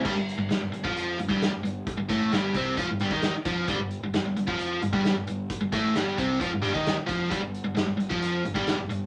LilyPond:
<<
  \new Staff \with { instrumentName = "Overdriven electric guitar" } { \clef bass \time 4/4 \key f \major \tempo 4 = 132 <g, g>16 g,8 g,16 g,16 g,16 g,16 <f f'>8. g,16 <g, g>8 g,16 g,8 | r16 g,16 <a, a>8 <g, g>8 <c c'>8 <f f'>16 g,16 <g, g>16 <ees ees'>8 r16 <f f'>8 | <g, g>16 g,8 g,16 g,16 g,16 g,16 <f f'>8. g,16 <g, g>8 g,16 g,8 | r16 g,16 <a, a>8 <g, g>8 <c c'>8 <f f'>16 g,16 <g, g>16 <ees ees'>8 r16 <f f'>8 |
<g, g>16 g,8 g,16 g,16 g,16 g,16 <f f'>8. g,16 <g, g>8 g,16 g,8 | }
  \new Staff \with { instrumentName = "Fingered electric bass" } { \clef bass \time 4/4 \key f \major g,,16 g,,8 g,,16 g,,16 g,,16 g,,16 f,8. g,,16 g,,8 g,,16 g,,8 | r16 g,,16 a,,8 g,,8 c,8 f,16 g,,16 g,,16 ees,8 r16 f,8 | g,,16 g,,8 g,,16 g,,16 g,,16 g,,16 f,8. g,,16 g,,8 g,,16 g,,8 | r16 g,,16 a,,8 g,,8 c,8 f,16 g,,16 g,,16 ees,8 r16 f,8 |
g,,16 g,,8 g,,16 g,,16 g,,16 g,,16 f,8. g,,16 g,,8 g,,16 g,,8 | }
  \new DrumStaff \with { instrumentName = "Drums" } \drummode { \time 4/4 <cymc bd>8 hh8 <hh sn>8 hh16 bd16 hh8 hh16 bd16 <hh sn>8 hh8 | <hh bd>8 <hh bd>8 <hh sn>8 <hh bd>8 <hh bd>8 hh16 bd16 <hh sn>8 <hh bd>8 | <hh bd>8 hh8 <hh sn>8 hh16 bd16 hh8 hh16 bd16 <hh sn>8 hh8 | <hh bd>8 <hh bd>8 <hh sn>8 <hh bd>8 <hh bd>8 hh16 bd16 <hh sn>8 <hh bd>8 |
<hh bd>8 hh8 <hh sn>8 hh16 bd16 hh8 hh16 bd16 <hh sn>8 hh8 | }
>>